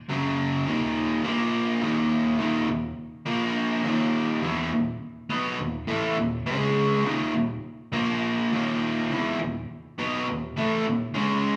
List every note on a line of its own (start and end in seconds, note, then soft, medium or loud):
0.09 0.66 F#2 medium
0.09 0.66 C#3 loud
0.09 0.66 F#3 loud
0.67 1.23 D#2 medium
0.67 1.22 A#2 loud
0.67 1.24 D#3 loud
1.24 1.81 A#2 medium
1.24 1.81 F3 medium
1.24 1.81 A#3 loud
1.82 2.38 D#2 loud
1.82 2.38 A#2 loud
1.82 2.38 D#3 loud
2.39 2.67 D#2 medium
2.39 2.67 A#2 medium
2.39 2.68 D#3 medium
2.68 2.92 D#2 medium
2.68 2.92 A#2 medium
3.26 3.83 A#2 medium
3.26 3.83 F3 medium
3.26 3.84 A#3 loud
3.84 4.42 D#2 medium
3.84 4.42 A#2 medium
3.84 4.42 D#3 loud
4.42 4.71 E2 medium
4.42 4.71 B2 medium
4.42 4.71 E3 medium
4.72 4.95 D#2 medium
4.72 4.95 A#2 medium
5.29 5.58 B2 medium
5.29 5.59 F#3 medium
5.29 5.58 B3 medium
5.59 5.82 D#2 medium
5.59 5.83 A#2 medium
5.87 6.16 A2 medium
5.87 6.17 E3 medium
5.87 6.17 A3 loud
6.17 6.41 D#2 medium
6.17 6.41 A#2 medium
6.46 7.04 C#3 medium
6.46 7.04 G#3 medium
6.46 7.05 C#4 loud
7.04 7.33 D#2 medium
7.04 7.33 A#2 medium
7.04 7.34 D#3 medium
7.34 7.58 D#2 medium
7.34 7.58 A#2 medium
7.92 8.50 A#2 medium
7.92 8.51 F3 medium
7.92 8.51 A#3 medium
8.52 9.09 D#2 medium
8.52 9.10 A#2 medium
8.52 9.10 D#3 loud
9.10 9.39 E2 medium
9.10 9.39 B2 medium
9.10 9.39 E3 loud
9.40 9.63 D#2 medium
9.40 9.63 A#2 medium
9.98 10.26 B2 medium
9.98 10.27 F#3 medium
9.98 10.27 B3 loud
10.28 10.51 D#2 medium
10.28 10.51 A#2 medium
10.57 10.85 A2 medium
10.57 10.85 E3 medium
10.57 10.85 A3 loud
10.86 11.09 D#2 medium
10.86 11.10 A#2 medium
11.14 11.56 C#3 medium
11.14 11.56 G#3 medium
11.14 11.56 C#4 loud